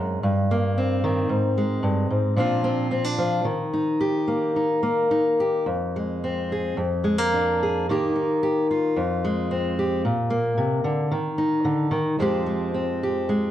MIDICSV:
0, 0, Header, 1, 2, 480
1, 0, Start_track
1, 0, Tempo, 538600
1, 1149, Time_signature, 4, 2, 24, 8
1, 3074, Tempo, 554017
1, 6914, Tempo, 541028
1, 11907, End_track
2, 0, Start_track
2, 0, Title_t, "Steel-string acoustic guitar"
2, 0, Program_c, 0, 25
2, 0, Note_on_c, 0, 42, 63
2, 0, Note_on_c, 0, 56, 49
2, 195, Note_off_c, 0, 42, 0
2, 199, Note_off_c, 0, 56, 0
2, 208, Note_on_c, 0, 43, 70
2, 455, Note_on_c, 0, 58, 58
2, 691, Note_on_c, 0, 60, 58
2, 925, Note_on_c, 0, 51, 75
2, 1126, Note_off_c, 0, 43, 0
2, 1130, Note_off_c, 0, 58, 0
2, 1152, Note_on_c, 0, 44, 65
2, 1156, Note_off_c, 0, 51, 0
2, 1404, Note_on_c, 0, 56, 57
2, 1626, Note_off_c, 0, 44, 0
2, 1629, Note_on_c, 0, 43, 67
2, 1871, Note_off_c, 0, 43, 0
2, 1876, Note_on_c, 0, 44, 59
2, 2107, Note_on_c, 0, 46, 74
2, 2110, Note_off_c, 0, 60, 0
2, 2114, Note_off_c, 0, 44, 0
2, 2116, Note_on_c, 0, 53, 56
2, 2118, Note_off_c, 0, 56, 0
2, 2122, Note_on_c, 0, 60, 55
2, 2129, Note_on_c, 0, 62, 55
2, 2136, Note_on_c, 0, 65, 64
2, 2342, Note_off_c, 0, 60, 0
2, 2352, Note_on_c, 0, 60, 61
2, 2584, Note_off_c, 0, 60, 0
2, 2591, Note_off_c, 0, 62, 0
2, 2594, Note_on_c, 0, 60, 59
2, 2713, Note_off_c, 0, 60, 0
2, 2713, Note_on_c, 0, 62, 44
2, 2827, Note_off_c, 0, 53, 0
2, 2837, Note_on_c, 0, 53, 64
2, 3048, Note_off_c, 0, 53, 0
2, 3072, Note_off_c, 0, 46, 0
2, 3072, Note_on_c, 0, 51, 64
2, 3075, Note_off_c, 0, 62, 0
2, 3086, Note_off_c, 0, 65, 0
2, 3322, Note_on_c, 0, 63, 53
2, 3556, Note_on_c, 0, 67, 70
2, 3791, Note_on_c, 0, 58, 62
2, 4027, Note_off_c, 0, 63, 0
2, 4038, Note_on_c, 0, 63, 57
2, 4259, Note_off_c, 0, 58, 0
2, 4269, Note_on_c, 0, 58, 68
2, 4502, Note_off_c, 0, 63, 0
2, 4513, Note_on_c, 0, 63, 56
2, 4754, Note_off_c, 0, 67, 0
2, 4764, Note_on_c, 0, 67, 64
2, 4968, Note_off_c, 0, 58, 0
2, 4968, Note_off_c, 0, 63, 0
2, 4972, Note_off_c, 0, 67, 0
2, 4990, Note_on_c, 0, 41, 61
2, 4997, Note_off_c, 0, 51, 0
2, 5250, Note_on_c, 0, 56, 48
2, 5490, Note_on_c, 0, 60, 55
2, 5735, Note_on_c, 0, 68, 55
2, 5938, Note_off_c, 0, 68, 0
2, 5941, Note_off_c, 0, 41, 0
2, 5951, Note_on_c, 0, 41, 66
2, 5965, Note_off_c, 0, 60, 0
2, 5966, Note_off_c, 0, 56, 0
2, 6185, Note_on_c, 0, 56, 55
2, 6308, Note_off_c, 0, 56, 0
2, 6308, Note_on_c, 0, 58, 42
2, 6443, Note_on_c, 0, 62, 56
2, 6694, Note_on_c, 0, 68, 56
2, 6888, Note_off_c, 0, 62, 0
2, 6894, Note_off_c, 0, 68, 0
2, 6909, Note_off_c, 0, 58, 0
2, 6910, Note_off_c, 0, 41, 0
2, 6924, Note_on_c, 0, 51, 72
2, 6929, Note_on_c, 0, 58, 57
2, 6934, Note_on_c, 0, 63, 58
2, 6940, Note_on_c, 0, 67, 60
2, 7146, Note_off_c, 0, 63, 0
2, 7157, Note_on_c, 0, 63, 47
2, 7389, Note_off_c, 0, 67, 0
2, 7399, Note_on_c, 0, 67, 67
2, 7639, Note_off_c, 0, 67, 0
2, 7646, Note_on_c, 0, 65, 50
2, 7850, Note_off_c, 0, 63, 0
2, 7856, Note_off_c, 0, 58, 0
2, 7874, Note_on_c, 0, 41, 71
2, 7883, Note_off_c, 0, 51, 0
2, 8124, Note_on_c, 0, 56, 66
2, 8358, Note_on_c, 0, 60, 60
2, 8596, Note_off_c, 0, 65, 0
2, 8606, Note_on_c, 0, 67, 56
2, 8806, Note_off_c, 0, 67, 0
2, 8825, Note_off_c, 0, 41, 0
2, 8829, Note_off_c, 0, 60, 0
2, 8831, Note_off_c, 0, 56, 0
2, 8836, Note_on_c, 0, 46, 70
2, 9063, Note_on_c, 0, 58, 58
2, 9301, Note_off_c, 0, 46, 0
2, 9304, Note_on_c, 0, 48, 67
2, 9537, Note_off_c, 0, 48, 0
2, 9541, Note_on_c, 0, 50, 64
2, 9750, Note_off_c, 0, 58, 0
2, 9779, Note_off_c, 0, 50, 0
2, 9782, Note_on_c, 0, 51, 70
2, 10018, Note_on_c, 0, 63, 57
2, 10253, Note_on_c, 0, 50, 65
2, 10477, Note_off_c, 0, 51, 0
2, 10488, Note_on_c, 0, 51, 70
2, 10498, Note_off_c, 0, 50, 0
2, 10713, Note_off_c, 0, 63, 0
2, 10733, Note_on_c, 0, 41, 63
2, 10735, Note_off_c, 0, 51, 0
2, 10742, Note_on_c, 0, 53, 60
2, 10747, Note_on_c, 0, 56, 58
2, 10757, Note_on_c, 0, 60, 60
2, 10765, Note_on_c, 0, 67, 62
2, 10969, Note_off_c, 0, 56, 0
2, 10980, Note_on_c, 0, 56, 49
2, 11216, Note_off_c, 0, 60, 0
2, 11227, Note_on_c, 0, 60, 53
2, 11474, Note_off_c, 0, 67, 0
2, 11485, Note_on_c, 0, 67, 57
2, 11701, Note_off_c, 0, 56, 0
2, 11712, Note_on_c, 0, 56, 57
2, 11907, Note_off_c, 0, 41, 0
2, 11907, Note_off_c, 0, 53, 0
2, 11907, Note_off_c, 0, 56, 0
2, 11907, Note_off_c, 0, 60, 0
2, 11907, Note_off_c, 0, 67, 0
2, 11907, End_track
0, 0, End_of_file